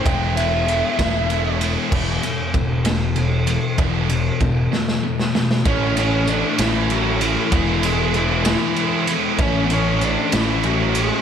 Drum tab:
CC |------------|x-----------|------------|------------|
RD |x-x-x-x-x-x-|--x-x-x-x-x-|x-x-x-------|x-x-x-x-x-x-|
SD |------o-----|------o-----|------oo-ooo|------o-----|
BD |o-----o-----|o---o-------|o---o-------|o-----------|

CC |------------|------------|
RD |x-x-x-x-x-x-|x-x-x-x-x-x-|
SD |------o-----|------o-----|
BD |o-----------|o-----------|